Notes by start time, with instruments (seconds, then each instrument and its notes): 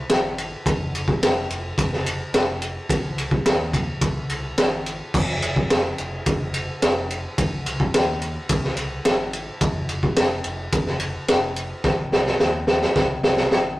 0.09 picked electric bass G#1, snare, ride
0.38 ride
0.66 picked electric bass F1, kick, ride
0.95 ride
1.08 kick
1.22 picked electric bass F1, snare, ride
1.49 picked electric bass F1, ride
1.78 picked electric bass F1, kick, ride
1.92 snare
2.06 ride
2.33 picked electric bass F1, snare, ride
2.62 ride
2.89 picked electric bass G#1, kick, ride
3.17 picked electric bass C2, ride
3.31 kick
3.45 picked electric bass D#2, snare, ride
3.73 kick, ride
4.01 picked electric bass C2, kick, ride
4.30 picked electric bass C2, ride
4.58 picked electric bass G#1, snare, ride
4.86 ride
5.14 picked electric bass F1, kick, crash
5.42 ride
5.56 kick
5.70 picked electric bass F1, snare, ride
5.98 picked electric bass F1, ride
6.26 picked electric bass F1, kick, ride
6.54 ride
6.82 picked electric bass F1, snare, ride
7.10 ride
7.38 picked electric bass G#1, kick, ride
7.66 picked electric bass C2, ride
7.80 kick
7.93 picked electric bass D#2, snare, ride
8.22 ride
8.49 picked electric bass C2, kick, ride
8.64 snare
8.77 picked electric bass C2, ride
9.05 picked electric bass G#1, snare, ride
9.33 ride
9.61 picked electric bass F1, kick, ride
9.89 ride
10.03 kick
10.16 picked electric bass F1, snare, ride
10.44 picked electric bass F1, ride
10.72 picked electric bass F1, kick, ride
10.86 snare
11.00 ride
11.28 picked electric bass F1, snare, ride
11.56 ride
11.84 picked electric bass G#1, kick, snare
12.12 picked electric bass C2, snare
12.26 snare
12.40 picked electric bass D#2, snare
12.67 snare
12.82 snare
12.96 picked electric bass C2, kick, snare
13.23 picked electric bass C2, snare
13.37 snare
13.51 picked electric bass G#1, snare